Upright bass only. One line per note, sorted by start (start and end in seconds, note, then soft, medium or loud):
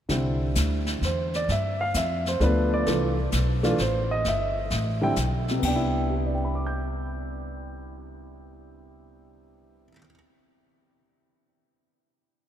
0.09 0.54 C2 medium
0.55 1.00 D2 medium
1.01 1.46 E2 medium
1.48 1.93 G2 medium
1.94 2.39 F2 medium
2.40 2.85 D2 medium
2.87 3.31 C2 medium
3.33 3.77 B1 medium
3.79 4.23 A1 medium
4.25 4.69 G1 medium
4.72 5.16 A1 medium
5.17 5.61 B1 medium
5.63 9.87 C2 medium